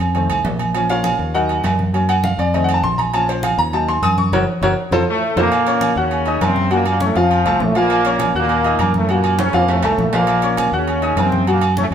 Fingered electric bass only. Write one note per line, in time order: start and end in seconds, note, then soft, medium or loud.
0.00 0.27 F2 loud
0.29 0.43 C2 medium
0.45 1.14 A#1 loud
1.19 1.61 D#2 medium
1.64 2.33 F#2 loud
2.38 2.80 F2 loud
2.83 3.53 A#1 loud
3.58 4.00 D#2 loud
4.02 4.30 F#2 loud
4.32 4.44 F#1 loud
4.61 4.73 F#1 loud
4.91 5.03 F2 loud
5.36 5.48 F2 loud
5.96 6.38 D#2 loud
6.41 7.10 F#2 loud
7.16 7.43 F2 medium
7.45 7.59 C2 medium
7.60 8.29 A#1 loud
8.35 8.76 D#2 loud
8.79 9.48 F#2 loud
9.54 9.81 F2 loud
9.84 9.97 C2 medium
9.98 10.67 A#1 loud
10.72 11.14 D#2 loud
11.16 11.85 F#2 loud
11.91 11.94 F2 loud